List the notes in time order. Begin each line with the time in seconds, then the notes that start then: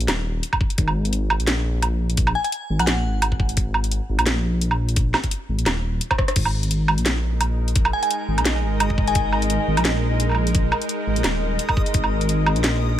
0.00 A#1, closed hi-hat
0.08 D#1, snare, closed hi-hat, low woodblock
0.43 closed hi-hat
0.53 kick, low woodblock
0.61 kick
0.70 closed hi-hat
0.78 G#1, kick, closed hi-hat
0.88 low woodblock
1.05 closed hi-hat
1.13 closed hi-hat
1.30 G#1, low woodblock
1.40 A#1, closed hi-hat
1.47 snare, closed hi-hat
1.82 closed hi-hat, low woodblock
2.10 closed hi-hat
2.17 kick, closed hi-hat
2.27 low woodblock
2.35 G#5
2.44 G#5, closed hi-hat
2.52 closed hi-hat
2.70 G#1
2.79 A#1 F#5, closed hi-hat, low woodblock
2.87 F#5, snare, closed hi-hat
3.05 G#1
3.22 closed hi-hat, low woodblock
3.32 kick
3.40 kick
3.49 closed hi-hat
3.57 kick, closed hi-hat
3.74 low woodblock
3.84 closed hi-hat
3.92 closed hi-hat
4.09 G#1
4.19 A#1, closed hi-hat, low woodblock
4.26 snare, closed hi-hat
4.61 closed hi-hat
4.71 low woodblock
4.89 closed hi-hat
4.96 kick, closed hi-hat
5.14 snare, low woodblock
5.24 kick, closed hi-hat
5.31 closed hi-hat
5.49 G#1
5.59 A#1, closed hi-hat
5.66 D#1, snare, closed hi-hat, low woodblock
6.01 closed hi-hat
6.11 kick, cross-stick, low woodblock
6.18 kick, cross-stick
6.28 cross-stick, closed hi-hat
6.36 G#1 G#3 D#4 A#4 D#5, kick, closed hi-hat, crash
6.45 low woodblock
6.63 closed hi-hat
6.71 closed hi-hat
6.88 G#1, low woodblock
6.98 A#1, closed hi-hat
7.06 snare, closed hi-hat
7.41 closed hi-hat, low woodblock
7.68 closed hi-hat
7.76 kick, closed hi-hat
7.85 low woodblock
7.93 G#5
8.03 G#5, closed hi-hat
8.11 closed hi-hat
8.28 G#1
8.38 A#1, closed hi-hat, low woodblock
8.45 snare, closed hi-hat
8.63 G#1
8.80 closed hi-hat, low woodblock
8.90 kick
8.98 kick
9.07 G#5, closed hi-hat
9.15 kick, closed hi-hat
9.33 low woodblock
9.42 closed hi-hat
9.50 closed hi-hat
9.68 G#1
9.77 A#1, closed hi-hat, low woodblock
9.85 snare, closed hi-hat
10.20 closed hi-hat
10.29 low woodblock
10.31 low woodblock
10.35 low woodblock
10.47 closed hi-hat
10.55 kick, closed hi-hat
10.72 low woodblock
10.82 closed hi-hat
10.89 closed hi-hat
11.07 G#1
11.16 A#1, closed hi-hat
11.24 D#1, snare, closed hi-hat, low woodblock
11.59 closed hi-hat
11.69 kick, low woodblock
11.77 kick
11.86 closed hi-hat
11.94 G#1, kick, closed hi-hat
12.04 low woodblock
12.21 closed hi-hat
12.29 closed hi-hat
12.46 G#1, low woodblock
12.56 A#1, closed hi-hat
12.64 snare, closed hi-hat